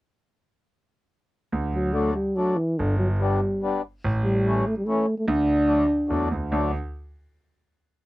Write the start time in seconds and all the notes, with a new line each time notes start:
1.52 D2
1.74 F#3
1.93 F#3 A3 D4
2.14 G3
2.35 F#3 A3 D4
2.56 E3
2.78 G1 D3
2.98 F#3
3.20 G3 B3 D4
3.62 G3 B3 D4
4.04 A1
4.24 G3
4.46 E3 A3 C#4
4.67 A3
4.77 G3
4.85 E3 A3 C#4
5.18 A3
5.28 D2 D4
5.67 F#3 A3 D4
6.08 E2 F#3 A3 D4
6.31 D2
6.51 D2 F#3 A3 D4